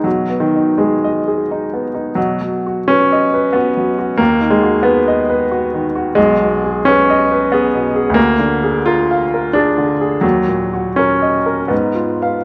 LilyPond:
<<
  \new Staff \with { instrumentName = "Grand piano" } { \time 3/4 \key b \major \tempo 4 = 88 \tuplet 3/2 { b,8 b8 dis'8 gis'8 dis''8 gis'8 dis'8 b8 dis'8 } | \tuplet 3/2 { b,8 fis8 fis'8 b'8 dis''8 b'8 fis'8 fis8 fis'8 } | \tuplet 3/2 { dis,8 dis8 fis'8 b'8 dis''8 b'8 fis'8 dis8 fis'8 } | \key ees \minor \tuplet 3/2 { ces,8 ces8 aes'8 ces''8 ees''8 ces''8 aes'8 ces8 aes'8 } |
\tuplet 3/2 { d,8 d8 aes'8 bes'8 f''8 bes'8 aes'8 d8 aes'8 } | \tuplet 3/2 { ees,8 bes,8 ges'8 bes'8 ees''8 bes'8 aes,8 f'8 <ces'' f''>8 } | }
  \new Staff \with { instrumentName = "Grand piano" } { \time 3/4 \key b \major fis8 dis8 gis4. r8 | fis4 cis'4 b4 | ais8 gis8 b4. r8 | \key ees \minor aes4 des'4 ces'4 |
bes4 f'4 d'4 | ges4 des'4 ces'4 | }
>>